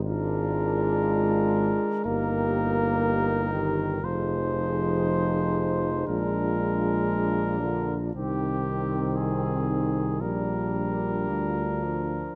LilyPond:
<<
  \new Staff \with { instrumentName = "Cornet" } { \time 4/4 \key bes \mixolydian \tempo 4 = 58 bes'2 bes'2 | c''2 bes'2 | g'4 aes'4 bes'2 | }
  \new Staff \with { instrumentName = "French horn section" } { \time 4/4 \key bes \mixolydian f'2 g'2 | aes'2 f'2 | ees'2 f'2 | }
  \new Staff \with { instrumentName = "Trombone section" } { \time 4/4 \key bes \mixolydian d'2 ees'2 | ees'2 d'2 | c'2 d'2 | }
  \new Staff \with { instrumentName = "Euphonium" } { \clef bass \time 4/4 \key bes \mixolydian aes2 bes4. ees8 | f2 aes4. d8 | ees2 g4. f8 | }
  \new Staff \with { instrumentName = "Tuba" } { \clef bass \time 4/4 \key bes \mixolydian aes,,4. r8 g,,2 | f,,2 bes,,2 | c,2 bes,,4 d,4 | }
>>